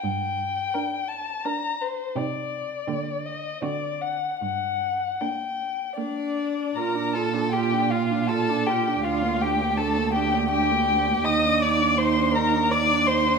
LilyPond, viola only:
\new Staff \with { instrumentName = "Viola" } { \time 3/4 \key g \minor \tempo 4 = 81 r4 d'8. r16 d'8. r16 | ees'8. r16 bes8. r16 c'8. r16 | r4 bes8. r16 bes8. r16 | \key bes \major f'16 d'16 f'16 d'16 f'16 d'16 f'16 d'16 f'16 d'16 f'16 d'16 |
d'16 bes16 d'16 bes16 d'16 bes16 d'16 bes16 d'16 bes16 d'16 bes16 | ees'16 d'16 ees'16 d'16 ees'16 d'16 ees'16 d'16 ees'16 d'16 ees'16 d'16 | }